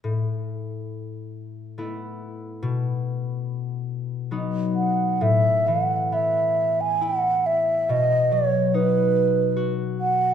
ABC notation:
X:1
M:3/4
L:1/16
Q:1/4=70
K:Bdor
V:1 name="Flute"
z12 | z8 z2 f2 | e2 f2 e3 g f2 e2 | ^d2 c2 B4- B z f2 |]
V:2 name="Harp"
A,,8 [A,B,E]4 | B,,8 [F,B,^D]4 | A,,2 E,2 B,4 E4 | B,,2 F,2 ^D4 F4 |]